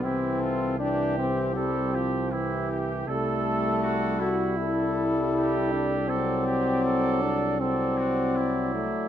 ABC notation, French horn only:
X:1
M:4/4
L:1/8
Q:1/4=79
K:C
V:1 name="French horn"
C2 D C C3 z | [K:Ador] A,3 F E3 D | C3 D C3 A, |]